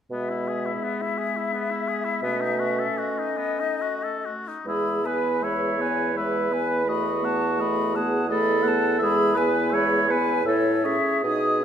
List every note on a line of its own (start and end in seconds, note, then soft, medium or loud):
0.10 0.72 B2 soft
0.10 2.19 G#3 soft
0.10 0.31 B3 soft
0.10 2.20 B3 soft
0.10 3.00 E5 soft
0.30 0.49 E4 soft
0.48 0.67 G#4 soft
0.66 0.86 E4 soft
0.84 1.03 B3 soft
1.02 1.19 E4 soft
1.18 1.38 G#4 soft
1.36 1.55 E4 soft
1.53 1.73 B3 soft
1.71 1.90 E4 soft
1.88 2.06 G#4 soft
2.05 2.23 E4 soft
2.23 2.85 B2 soft
2.23 4.27 A3 soft
2.23 2.43 B3 soft
2.23 4.28 C#4 soft
2.41 2.61 D#4 soft
2.60 2.81 F#4 soft
2.79 3.00 A4 soft
2.98 3.20 F#4 soft
2.98 4.32 D#5 soft
3.18 3.39 D#4 soft
3.38 3.62 B3 soft
3.60 3.83 D#4 soft
3.82 4.05 F#4 soft
4.03 4.27 A4 soft
4.25 4.49 F#4 soft
4.48 4.67 D#4 soft
4.65 8.96 E2 soft
4.65 5.04 G#3 soft
4.65 5.07 G#4 soft
4.65 5.09 E5 soft
4.65 5.07 B5 soft
5.03 5.44 B3 soft
5.03 5.45 B4 soft
5.03 5.46 G#5 soft
5.07 5.45 B4 soft
5.42 5.80 G#3 soft
5.42 6.18 C#5 medium
5.42 5.83 E5 soft
5.42 5.83 B5 soft
5.79 6.14 B3 soft
5.79 6.17 B4 soft
5.79 6.14 G#5 soft
6.15 6.52 G#3 soft
6.15 6.91 B4 medium
6.15 6.54 E5 soft
6.15 6.55 B5 soft
6.50 6.85 B3 soft
6.50 6.88 B4 soft
6.50 6.88 G#5 soft
6.86 7.23 A3 soft
6.86 7.98 F#4 medium
6.86 7.26 D#5 soft
6.86 7.27 B5 soft
7.22 7.61 B3 soft
7.22 7.62 F#5 soft
7.22 7.63 A5 soft
7.59 7.96 A3 soft
7.59 7.97 D#5 soft
7.59 7.97 B5 soft
7.95 8.29 B3 soft
7.95 8.31 G#4 medium
7.95 8.29 F#5 soft
7.95 8.30 A5 soft
8.29 8.67 A3 soft
8.29 9.00 A4 medium
8.29 8.64 D#5 soft
8.29 8.69 B5 soft
8.63 9.01 B3 soft
8.63 8.98 F#5 soft
8.68 9.02 A5 soft
8.99 10.43 E2 medium
8.99 9.37 G#3 soft
8.99 9.39 G#4 medium
8.99 9.36 E5 medium
9.03 9.39 B5 soft
9.34 9.74 B3 soft
9.34 9.73 B4 soft
9.34 9.75 B4 medium
9.34 9.77 G#5 soft
9.71 10.12 G#3 soft
9.71 10.12 C#5 medium
9.71 10.09 E5 soft
9.75 10.12 B5 soft
10.08 10.45 B3 soft
10.08 10.45 B4 soft
10.08 10.47 B4 medium
10.08 10.47 G#5 soft
10.45 10.95 A2 soft
10.45 10.86 E4 soft
10.45 10.87 A4 medium
10.45 10.87 C#5 soft
10.45 10.86 E5 soft
10.85 11.24 C#4 soft
10.85 11.24 G#4 medium
10.85 11.23 C#5 soft
10.85 11.25 E5 soft
11.23 11.65 B2 soft
11.23 11.65 D#4 soft
11.23 11.65 G#4 medium
11.23 11.65 D#5 soft
11.23 11.65 D#6 soft